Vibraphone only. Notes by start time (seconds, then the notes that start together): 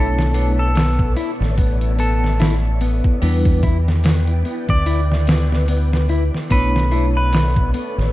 Already playing: A3 D4 E4 C#5
0.34 A3 D4 E4 C#5
3.21 G3 D4 E4 B4
6.50 A3 D4 E4 C#5
6.91 A3 D4 E4 C#5